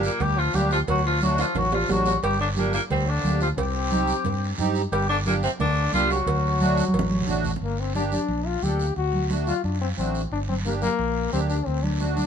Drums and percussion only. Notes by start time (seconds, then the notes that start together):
0.03 short guiro
0.20 cowbell, high conga, low conga, long guiro
0.54 high conga, low timbale, short guiro
0.71 short guiro
0.88 cowbell, high conga, low conga, long guiro
1.21 high conga, short guiro
1.38 high timbale, short guiro
1.55 cowbell, high conga, low conga, high timbale, long guiro
1.72 low timbale
1.88 high conga, low timbale, short guiro
2.06 low timbale, short guiro
2.23 cowbell, high conga, long guiro
2.56 high conga, short guiro
2.73 short guiro
2.90 cowbell, high conga, low conga, long guiro
3.24 high conga, short guiro
3.41 short guiro
3.58 cowbell, high conga, low conga, long guiro
3.91 high conga, short guiro
4.07 short guiro
4.25 cowbell, high conga, low conga, long guiro
4.58 high conga, low conga, short guiro
4.75 short guiro
4.92 cowbell, long guiro
5.26 high conga, short guiro
5.43 short guiro
5.60 cowbell, high conga, low conga, long guiro
5.93 high conga, short guiro
6.10 short guiro
6.27 cowbell, high conga, low conga, long guiro
6.61 high conga, short guiro
6.77 high conga, short guiro
6.88 high conga
6.94 cowbell, long guiro
6.99 low conga
7.11 high conga
7.22 low conga
7.28 short guiro
7.33 low conga
7.45 low conga, short guiro
7.56 low conga
7.61 high conga, long guiro
7.95 high conga, short guiro
8.12 high conga, short guiro
8.29 high conga, long guiro
8.62 high conga, short guiro
8.79 short guiro
8.96 high conga, long guiro
9.13 high conga
9.30 high conga, short guiro
9.47 high conga, short guiro
9.64 high conga, long guiro
9.98 high conga, short guiro
10.15 short guiro
10.32 high conga, long guiro
10.49 high conga
10.65 high conga, short guiro
10.82 high conga, short guiro
10.99 high conga, long guiro
11.33 high conga, short guiro
11.50 short guiro
11.66 high conga, long guiro
11.83 high conga
12.00 high conga, short guiro
12.17 high conga, short guiro